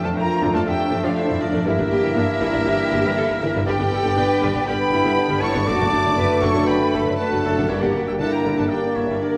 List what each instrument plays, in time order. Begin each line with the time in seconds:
Already playing: harp F2 F3 A3 A4, trombone section F3 A3, bassoon A3, cello section D4, french horn section D4 A4, clarinet D4
0.03 double bass section F2, viola section D3 F3, harp F4, violin section A4 A5, oboe F5, flute A5
0.16 double bass section F2, viola section A3 D4, cello section F4, violin section A#4 A#5, harp D5, oboe G5, flute A#5
0.29 harp A4
0.41 double bass section F2, viola section D3 F3, harp F5
0.54 double bass section F2, viola section A3 D4, violin section A4 A5, oboe F5, flute A5, harp D6
0.66 double bass section F2, viola section D3 F3, cello section D4, violin section G4 G5, oboe E5, harp F5, flute G5
0.79 harp D5
0.91 double bass section F2, viola section F3 A3, harp F4
1.03 double bass section F2, viola section D3 F3, harp A3, violin section F4 F5, oboe D5, flute F5
1.16 harp F3, violin section E4 E5, oboe C5, flute E5
1.28 double bass section F2, viola section F3 A3, harp A3
1.39 double bass section F2, viola section D3 F3, harp F3, violin section D4 D5, oboe A#4, flute D5
1.53 double bass section F2, harp A3, viola section A3 D4
1.65 double bass section G1, harp G2, trombone section E3 A#3, viola section E3 G3, bassoon A#3, french horn section D4 G4, violin section E4 E5, cello section E4, oboe A#4, flute E5
1.77 double bass section G1, harp D3, viola section A#3 D4
1.90 double bass section G1, viola section G3 A#3, harp A#3, cello section G4
2.03 double bass section G1, viola section E3 G3, harp E4
2.15 double bass section G1, viola section A#3 D4, cello section D4, harp D5
2.28 harp A#4
2.40 double bass section G1, viola section E3 G3, cello section E4, harp E5
2.53 double bass section G1, viola section A#3 D4, harp D6
2.67 double bass section G1, viola section E3 G3, cello section G4, harp E5
2.79 harp D5
2.91 double bass section G1, viola section G3 A#3, harp E4
3.04 double bass section G1, viola section E3 G3, harp A#3
3.17 harp D3, cello section A4
3.29 double bass section G1, viola section G3 A#3
3.41 double bass section G1, harp D3, viola section E3 G3, cello section A#4
3.55 double bass section G1, viola section A#3 D4, harp A#3
3.66 double bass section G1, harp G2, trombone section D3 B3, viola section D3 G3, bassoon B3, clarinet D4, french horn section D4 G4, violin section G4 G5, cello section G4, oboe D5, flute G5
3.80 double bass section G1, harp D3, viola section B3 D4
3.92 double bass section G1, viola section G3 B3, harp B3, cello section A4
4.05 double bass section G1, viola section D3 G3, harp D4
4.17 double bass section G1, viola section B3 D4, cello section B4, harp D5
4.30 harp B4
4.42 double bass section G1, viola section D3 G3, harp D5
4.54 double bass section G1, viola section B3 D4, harp D6
4.66 double bass section G1, trombone section D3 B3, viola section D3 G3, french horn section D4 G4, cello section G4, violin section B4 B5, harp D5, oboe G5, flute B5
4.80 harp D4
4.92 double bass section G1, viola section G3 B3, harp B3, cello section E4
5.05 double bass section G1, viola section D3 G3, harp D3
5.17 harp B3, cello section D4
5.29 double bass section G1, harp D3, viola section G3 B3
5.41 double bass section G1, viola section D3 G3, harp B3, cello section E4, violin section C#5 C#6, oboe A5, flute C#6
5.54 double bass section G1, harp D3, viola section B3 D4
5.66 double bass section F#1, harp F#2, viola section D3 F#3, trombone section D3 A3, bassoon A3, french horn section D4 F#4, cello section F#4, violin section D5 D6, oboe A5, flute D6
5.79 double bass section F#1, harp F#3, viola section A3 D4
5.92 double bass section F#1, viola section F#3 A3, harp A3, cello section D4
6.05 double bass section F#1, viola section D3 F#3, harp D4
6.17 double bass section F#1, viola section A3 D4, cello section B4, harp D5
6.31 harp A4
6.42 double bass section F#1, viola section D3 F#3, cello section A4, violin section C#5 C#6, harp D5, oboe A5, flute C#6
6.56 double bass section F#1, viola section A3 D4, harp D6
6.67 double bass section F#1, viola section D3 F#3, violin section B4 B5, cello section B4, harp D5, oboe G5, flute B5
6.93 double bass section F#1, viola section F#3 A3, harp A3, cello section A4
7.06 double bass section F#1, viola section D3 F#3, harp F#3
7.17 trombone section D3 A3, harp A3, french horn section D4 F#4, violin section A4 A5, cello section B4, oboe F#5, flute A5
7.31 double bass section F#1, harp F#3, viola section F#3 A3
7.43 double bass section F#1, viola section D3 F#3, harp A3, cello section A4
7.57 double bass section F#1, harp F#3, viola section A3 D4
7.68 double bass section G1, harp G2, trombone section D3 A#3, viola section D3 G3, bassoon A#3, clarinet D4, french horn section D4 G4, violin section E4 E5, cello section G4, oboe C#5, flute E5
7.80 double bass section G1, harp D3, viola section A#3 D4, violin section F#4 F#5, oboe D5, flute F#5
7.94 double bass section G1, viola section G3 A#3, harp A#3
8.06 double bass section G1, viola section D3 G3, harp D4, violin section G4 G5, oboe E5, flute G5
8.19 double bass section G1, viola section A#3 D4, cello section E4, violin section A4 A5, harp D5, oboe F#5, flute A5
8.30 harp A#4, violin section A#4 A#5, oboe G5, flute A#5
8.45 double bass section G1, viola section D3 G3, harp D5
8.58 double bass section G1, viola section A#3 D4, violin section A4 A5, oboe F#5, flute A5, harp D6
8.69 double bass section G1, trombone section D3 A#3, viola section D3 G3, french horn section D4 G4, cello section D4, violin section G4 G5, oboe D5, harp D5, flute G5
8.83 harp D4
8.95 double bass section G1, viola section G3 A#3, harp A#3, violin section E4 E5, oboe C#5, flute E5
9.09 double bass section G1, harp D3, viola section D3 G3
9.21 trombone section D3 A#3, harp A#3, violin section D4 D5, french horn section D4 G4, oboe A#4, cello section A#4, flute D5